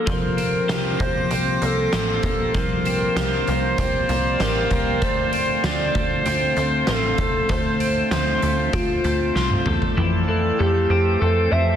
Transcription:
Already playing: A#3 D4 F4 A4
0.06 C2 C3 F3 A#3 F4 A#4 C5, kick, closed hi-hat
0.37 C4 A#6, closed hi-hat
0.57 D6
0.68 C2 G4, snare, closed hi-hat
0.99 C2 A#3 C5, kick, closed hi-hat
1.31 C2 C4 C5, closed hi-hat
1.61 C2 A#3 A4, closed hi-hat
1.93 A1 G4, snare, closed hi-hat
2.23 A#1 A#3, kick, closed hi-hat
2.54 C2 F3 A#4, kick, closed hi-hat
2.85 C4, closed hi-hat
3.16 C2 G4, snare, closed hi-hat
3.47 C2 A#3 C5 D5, closed hi-hat
3.68 F5
3.78 C2 C4 C5, kick, closed hi-hat
3.89 G5
4.09 C2 A#3, closed hi-hat
4.40 A1 G4 A#4, snare, closed hi-hat
4.71 C2 A#3, kick, closed hi-hat
5.02 D2 D3 A3 C5, kick, closed hi-hat
5.33 C4, closed hi-hat
5.64 D2 F4 D5, snare, closed hi-hat, tambourine
5.95 D2 A3, kick, closed hi-hat
6.26 D2 C4 C5, closed hi-hat
6.57 D2 A3, closed hi-hat
6.87 A1 F4 A4, snare, closed hi-hat, tambourine
7.18 C2 A3, kick, closed hi-hat
7.49 D2 A3 C5, kick, closed hi-hat
7.80 C4, closed hi-hat
8.11 D2 F4 C5, snare, closed hi-hat, tambourine
8.42 D2 A3, closed hi-hat
8.73 D2 C4 F4, kick, closed hi-hat
9.04 D2 A3, closed hi-hat
9.35 C2 F4, snare
9.51 high tom
9.66 E2 A3, mid tom
9.82 floor tom
9.97 F2 E3 C4 A4
10.28 E3 A4
10.59 F2 A3 G4 C5
10.90 F2 C4 G4
11.20 F2 A3 A4
11.51 F2 C4 E5

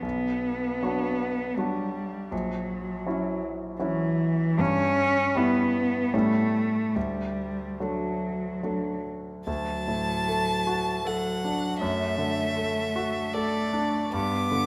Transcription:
0.02 B1 B3
0.82 F#3 D4 F#4
1.57 F#3 G3 D4 F#4
2.32 A#1 F#3
3.06 F#3 C#4 E4
3.79 E3 F#3 C#4 E4
4.58 G2 C#4
5.35 G3 B3 E4
6.14 A2 G3 A3 C#4 E4
6.95 D2 G3
7.80 F#3 A3 D4
8.63 F#3 A3 D4
9.47 D2 F#3 A5
9.88 A2
10.28 A3
10.67 F#4
11.05 F#3 A4 F#5
11.45 D4
11.79 F#2 A3 E5
12.18 D3
12.56 A3
12.96 F#4
13.33 A3 A4 D5
13.73 D4
14.13 G2 B3 D6
14.51 D3

